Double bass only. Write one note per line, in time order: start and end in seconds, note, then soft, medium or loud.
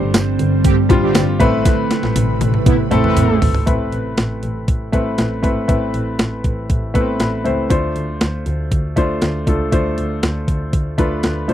0.02 0.11 G1 medium
0.14 0.32 G1 medium
0.39 0.57 G1 loud
0.65 0.83 G1 loud
0.90 1.08 A1 medium
1.15 1.33 G1 medium
1.40 1.76 A1 medium
2.03 2.12 A1 medium
2.16 2.34 A1 loud
2.41 2.59 A1 loud
2.66 2.85 A1 medium
2.92 3.10 A1 medium
3.17 3.35 A1 loud
3.42 3.60 G#1 medium
3.67 3.85 A1 medium
3.93 4.11 A1 medium
4.18 4.36 A1 medium
4.43 4.61 A1 medium
4.68 4.86 A1 medium
4.93 5.11 A1 medium
5.19 5.37 A1 medium
5.44 5.62 G#1 medium
5.69 5.87 A1 medium
5.94 6.12 A1 medium
6.19 6.37 A1 medium
6.44 6.62 A1 medium
6.70 6.88 A1 medium
6.95 7.13 A1 medium
7.20 7.38 A1 medium
7.45 7.64 C#2 medium
7.71 7.89 D2 medium
7.96 8.14 D2 medium
8.21 8.39 D2 medium
8.46 8.64 D2 loud
8.72 8.90 D2 medium
8.97 9.15 D2 medium
9.22 9.40 D2 medium
9.47 9.65 C#2 medium
9.72 9.90 D2 medium
9.98 10.16 D2 medium
10.23 10.41 D2 medium
10.48 10.66 D2 medium
10.73 10.91 D2 medium
10.98 11.16 D2 medium
11.24 11.42 D2 medium
11.49 11.54 G#1 medium